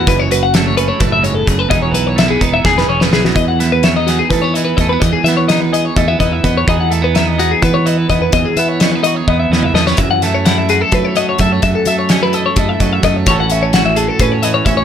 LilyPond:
<<
  \new Staff \with { instrumentName = "Clean electric guitar" } { \time 7/8 \key cis \minor \tempo 4 = 127 b'16 cis''16 b'16 fis''16 e''16 cis''16 b'16 cis''16 b'16 e''16 cis''16 a'16 gis'16 b'16 | dis''16 cis''16 b'16 cis''16 e''16 gis'16 b'16 e''16 gis'16 b'16 cis''16 b'16 gis'16 fis'16 | dis''16 fis''16 e''16 b'16 e''16 dis''16 fis'16 gis'16 b'16 cis''16 dis''16 b'16 dis''16 b'16 | dis''16 gis'16 e''16 cis''16 dis''16 b'16 dis''16 cis''16 dis''16 e''16 dis''16 e''16 dis''16 cis''16 |
dis''16 fis''16 e''16 b'16 e''16 dis''16 fis'16 gis'16 b'16 cis''16 dis''16 b'16 dis''16 b'16 | dis''16 gis'16 e''16 cis''16 dis''16 b'16 dis''16 cis''16 dis''16 e''16 dis''16 e''16 dis''16 cis''16 | e''16 fis''16 e''16 cis''16 fis''16 e''16 gis'16 a'16 b'16 cis''16 dis''16 cis''16 e''16 cis''16 | e''16 a'16 e''16 cis''16 dis''16 b'16 dis''16 cis''16 dis''16 e''16 dis''16 e''16 dis''16 cis''16 |
cis''16 fis''16 e''16 cis''16 fis''16 e''16 gis'16 a'16 b'16 cis''16 dis''16 cis''16 e''16 cis''16 | }
  \new Staff \with { instrumentName = "Clean electric guitar" } { \time 7/8 \key cis \minor << { r4 a8 cis'16 e'4.~ e'16 | <e b dis' gis'>4 a16 b16 dis'8 gis'8 cis'16 dis'8. | r8 b8 cis'16 dis'16 gis'8 a16 b8. a16 b16 | r8 b8 dis'8 gis'8 a16 b8. b8 |
<e b dis' gis'>8 a16 b16 dis'8 gis'8 b4 b8 | r8 b8 cis'16 dis'16 fis'16 gis'16 b4 a16 b16 | r8 a8 e'8 fis'16 a'16 a4 a8~ | a8 a8 cis'16 e'16 a'8 a4 a8 |
<e cis' fis' a'>8 cis'8 fis'8 a'8 cis'4 cis'8 | } \\ { <fis, e>8 fis4. a,8 gis,8 fis,8 | e,8 e2~ e8 e8 | e,2~ e,8 e4 | e,2~ e,8 e4 |
e,2~ e,8 e4 | e,2~ e,8 e4 | fis,2~ fis,8 fis4 | fis,2~ fis,8 fis4 |
a,2~ a,8 e4 | } >> }
  \new Staff \with { instrumentName = "Fingered electric bass" } { \clef bass \time 7/8 \key cis \minor fis,,2 fis,,4 fis,,8 | e,,8 b,,4 e,,8 e,,8 e,,8 b,,8 | e,2 e4 e,8 | e,16 r16 e4. e,8 e,8 e,8 |
e,2 e4 e,8 | e,16 r16 e4. e,8 e,8 e,8 | fis,2 fis4 fis,8 | fis,16 r16 fis4. fis,8 fis,8 fis,8 |
a,,2 a,4 a,,8 | }
  \new DrumStaff \with { instrumentName = "Drums" } \drummode { \time 7/8 <hh bd>8 hh8 <hh sn>8 hh8 <hh bd sn>8 hh8 <hh bd>8 | <hh bd>8 hh8 <hh sn>8 <hh bd>8 <bd sn>16 sn8 sn16 sn16 sn16 | <hh bd>8 <hh sn>8 <hh sn>8 <hh sn>8 <hh bd sn>8 hh8 <hh bd>8 | <hh bd>8 <hh sn>8 <hh sn>8 hh8 <hh bd>8 <hh bd>8 <hh bd>8 |
<hh bd>8 hh8 <hh sn>8 hh8 <hh bd>8 hh8 <hh bd>8 | <hh bd>8 hh8 <hh sn>8 hh8 bd8 sn16 toml16 sn16 sn16 | <hh bd>8 <hh sn>8 <hh sn>8 hh8 <hh bd>8 hh8 <hh bd>8 | <hh bd>8 hh8 <hh sn>8 hh8 <hh bd>8 <hh bd>8 <hh bd>8 |
<hh bd>8 hh8 <hh sn>8 hh8 <hh bd>8 hh8 <hh bd>8 | }
>>